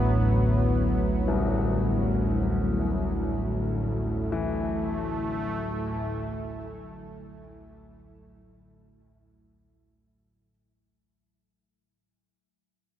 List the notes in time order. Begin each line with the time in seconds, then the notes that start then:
Already playing: A1 D2 A2 F#3 B3 E4
1.28 C2
3.20 A3
4.32 E3